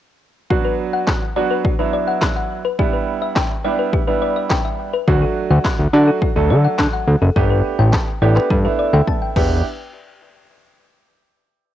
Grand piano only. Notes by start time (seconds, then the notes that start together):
0.50 F#3 B3 D4 F#4
1.36 F#3 B3 D4 F#4
1.79 F#3 B3 D4 E4
2.79 G3 B3 D4 E4
3.64 G3 B3 D4 E4
4.07 G3 B3 D4 E4
5.07 F#3 A3 D4 F#4
5.93 F#3 A3 D4 F#4
6.36 F#3 A3 D4 A4
7.36 A3 B3 D4 G4
8.22 A3 B3 D4 G4
8.64 A3 B3 D4 E4
9.36 B3 D4 E4 G4